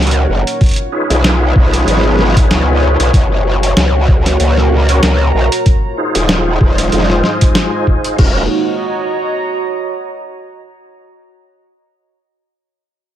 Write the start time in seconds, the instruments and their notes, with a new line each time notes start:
Already playing: wobble bass C#2, analog synth pad A#3 D#4 F#4 C#5, ambient pad D#4 A#4 C#5 F#5
0.02 closed hi-hat
0.07 closed hi-hat
0.11 closed hi-hat
0.29 wobble bass F#1
0.47 closed hi-hat
0.61 analog synth pad B3 F4 G#4, ambient pad F4, kick, closed hi-hat
0.64 closed hi-hat
0.66 closed hi-hat
0.69 closed hi-hat
0.71 closed hi-hat
0.74 closed hi-hat
0.76 closed hi-hat
0.88 ambient pad B4
0.92 tonewheel organ D#4 F4 G#4 B4
1.10 wobble bass B1, closed hi-hat
1.24 snare, closed hi-hat
1.56 wobble bass B1, kick
1.70 ambient pad G#5, snare, closed hi-hat
1.77 snare
1.81 snare
1.84 wobble bass G#1, snare
1.88 snare, closed hi-hat
1.92 snare
1.97 snare
2.01 snare
2.06 snare
2.09 snare
2.12 snare
2.16 snare
2.19 snare
2.24 snare
2.28 snare
2.32 snare
2.37 kick, closed hi-hat
2.50 wobble bass C#2, snare, closed hi-hat
3.00 wobble bass B1, closed hi-hat
3.12 wobble bass F#1, analog synth pad A#3 C#4 F#4, ambient pad F#4, kick, closed hi-hat
3.63 closed hi-hat
3.77 wobble bass C#2, ambient pad A#4, snare, closed hi-hat
4.08 kick
4.26 ambient pad A#5, snare, closed hi-hat
4.40 wobble bass C#2, closed hi-hat
4.57 snare
4.89 tonewheel organ C#4 F#4 A#4 C#5, closed hi-hat
5.03 wobble bass C#2, snare, closed hi-hat
5.34 wobble bass A#1
5.52 closed hi-hat
5.66 analog synth pad G#3 D#4 F4 C5, ambient pad F4, kick, closed hi-hat
5.97 tonewheel organ D#4 F4 G#4 C5
6.15 wobble bass D#1, closed hi-hat
6.29 snare, closed hi-hat
6.34 ambient pad C5
6.61 wobble bass D#1, ambient pad D#5, kick
6.78 ambient pad G#5, snare, closed hi-hat
6.82 snare
6.88 snare
6.92 wobble bass F1, snare, closed hi-hat
6.98 snare
7.03 snare
7.10 snare
7.24 snare
7.41 tonewheel organ D#4 F4 G#4 C5, kick, closed hi-hat
7.55 snare, closed hi-hat
7.87 kick
8.04 closed hi-hat
8.18 wobble bass D#1, tonewheel organ C#4 F4 F#4 A#4, ambient pad F#4, kick, crash
8.29 ambient pad C#5
8.39 ambient pad D#5
8.47 ambient pad A#5